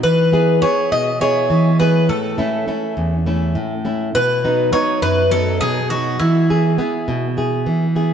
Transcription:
0.03 E3 B4
0.32 B3 E4 G#4
0.62 B3 E4 G#4 C#5
0.92 B2 D#5
1.21 B3 E4 G#4 C#5
1.50 E3
1.80 B3 E4 G#4 B4
2.09 A2 A4
2.38 A3 C#4 E4
2.68 A3 C#4 E4
2.97 E2
3.26 A3 C#4 E4
3.55 A2
3.85 A3 C#4 E4
4.15 B2 B4
4.44 F#3 B3 D#4
4.72 F#3 B3 D#4 C#5
5.02 F#2 B4
5.31 F#3 B3 D#4 A4
5.61 B2 G#4
5.90 F#3 B3 D#4 F#4
6.19 E3 E4
6.50 B3 E4 G#4
6.78 B3 E4 G#4
7.08 B2
7.37 B3 E4 G#4
7.66 E3
7.96 B3 E4 G#4

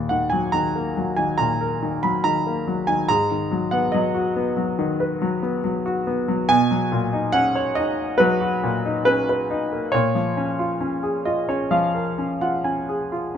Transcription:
Already playing: D#2 A#2
0.09 D#3 F#5
0.30 F#3 G#5
0.52 D#3 A#5
0.75 A#3
0.97 F#3
1.16 D#3 G#5
1.38 A#2 A#5
1.61 A#4
1.82 D#3
2.03 F#3 B5
2.24 D#3 A#5
2.46 A#3
2.67 F#3
2.87 D#3 G#5
3.08 G#2 A#5
3.31 D#3
3.51 F#3
3.71 B3 F#5
3.92 F#3 D#5
4.15 F#4
4.36 B3
4.57 F#3
4.79 D#3
5.00 B4
5.22 F#3
5.43 B3
5.64 F#3
5.86 F#4
6.07 B3
6.28 F#3
6.49 B2 G#5
6.71 F#3
6.92 A#2
7.13 D#4
7.32 C#4 F#5
7.55 C#5
7.75 D#4 D#5
8.18 F#3 B4
8.41 F#4
8.63 A#2
8.85 D#4
9.05 C#4 B4
9.29 B4
9.50 D#4
9.72 A#3
9.92 A#2 C#5
10.15 F3
10.37 C#4
10.59 F4
10.80 C#4
11.03 G#4
11.25 F4 D#5
11.49 C#4 C#5
11.71 F3 F5
11.94 A#4
12.18 C#4
12.41 F4 F#5
12.64 C#4 G#5
12.89 G#4
13.12 F4

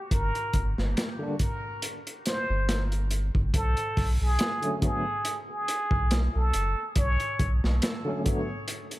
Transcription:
0.11 G1 A#4, kick, closed hi-hat
0.35 closed hi-hat
0.53 G1, kick, closed hi-hat
0.78 G1, snare
0.97 snare, closed hi-hat
1.19 D3 G3 A#3
1.23 D4
1.39 kick, closed hi-hat
1.82 closed hi-hat
2.07 closed hi-hat
2.26 C5, snare, closed hi-hat
2.50 G1
2.69 snare, closed hi-hat
2.92 closed hi-hat
3.11 closed hi-hat
3.35 G1, kick
3.54 B1 A4, kick, closed hi-hat
3.77 closed hi-hat
3.97 B1, kick, open hi-hat
4.21 B1 G#4
4.39 snare, closed hi-hat
4.62 D3 F#3 A3, closed hi-hat
4.66 C#4
4.81 D3 F#3 A3 G#4, kick, closed hi-hat
4.85 B3
5.25 closed hi-hat
5.50 G#4
5.68 closed hi-hat
5.91 B1, kick
6.11 snare, closed hi-hat
6.35 B1 A4
6.53 F#1, closed hi-hat
6.96 B1 C#5, kick, closed hi-hat
7.20 closed hi-hat
7.39 B1, kick, closed hi-hat
7.64 B1, snare
7.82 snare, closed hi-hat
8.05 D3 F#3 A3
8.09 C#4
8.24 D3 F#3 A3, kick, closed hi-hat
8.29 B3
8.68 closed hi-hat
8.91 closed hi-hat

